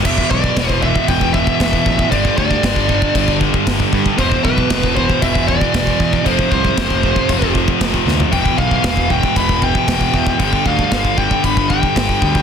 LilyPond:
<<
  \new Staff \with { instrumentName = "Lead electric guitar" } { \time 4/4 \key e \phrygian \tempo 4 = 116 e''8 d''4 e''8 g''8 e''4. | d''8 d''2 r4. | c''8 b'4 c''8 e''8 d''4. | c''8 c''2 r4. |
g''8 f''4 g''8 b''8 g''4. | g''8 f''4 g''8 b''8 g''4. | }
  \new Staff \with { instrumentName = "Distorted electric guitar" } { \clef bass \time 4/4 \key e \phrygian <e, b, e>1 | <g, d g>1 | <e, b, e>1 | <f, c f>1 |
<e, b, e>1 | <g, d g>1 | }
  \new Staff \with { instrumentName = "Distorted electric guitar" } { \clef bass \time 4/4 \key e \phrygian <e, b, e>4. <e, b, e>2~ <e, b, e>8 | <g, d g>4. <g, d g>2~ <g, d g>8 | <e, b, e>4. <e, b, e>2~ <e, b, e>8 | <f, c f>4. <f, c f>2~ <f, c f>8 |
<e, b, e>4. <e, b, e>2~ <e, b, e>8 | <g, d g>4. <g, d g>2~ <g, d g>8 | }
  \new Staff \with { instrumentName = "Picked electric bass" } { \clef bass \time 4/4 \key e \phrygian e,,8 b,,8 e,,4 e,,4 e,,8 a,,8 | g,,8 d,8 g,,4 g,,4 g,,8 g,8 | e,,8 b,,8 e,,4 e,,4 e,,8 e,8 | f,,8 c,8 f,,4 f,,4 f,,8 d,8 |
e,,8 b,,8 e,,4 e,,4 e,,8 e,8 | g,,8 d,8 g,,4 g,,4 g,,8 d,8 | }
  \new DrumStaff \with { instrumentName = "Drums" } \drummode { \time 4/4 <cymc bd>16 bd16 bd16 bd16 <cymc bd sn>16 bd16 bd16 bd16 <cymc bd>16 bd16 bd16 bd16 <cymc bd sn>16 bd16 bd16 bd16 | <cymc bd>16 bd16 bd16 bd16 <cymc bd sn>16 bd16 bd16 bd16 <cymc bd>16 bd16 bd16 bd16 <cymc bd sn>16 bd16 bd16 bd16 | <cymc bd>16 bd16 bd16 bd16 <cymc bd sn>16 bd16 bd16 bd16 <cymc bd>16 bd16 bd16 bd16 <cymc bd sn>16 bd16 bd16 bd16 | <cymc bd>16 bd16 bd16 bd16 <cymc bd sn>16 bd16 bd16 bd16 <cymc bd>16 bd16 bd16 bd16 <cymc bd sn>16 bd16 sn16 tomfh16 |
<cymc bd>16 bd16 bd16 bd16 <cymc bd sn>16 bd16 bd16 bd16 <cymc bd>16 bd16 bd16 bd16 <cymc bd sn>16 bd16 bd16 bd16 | <cymc bd>16 bd16 bd16 bd16 <cymc bd sn>16 bd16 bd16 bd16 <cymc bd>16 bd16 bd16 bd16 <cymc bd sn>16 bd16 bd16 bd16 | }
>>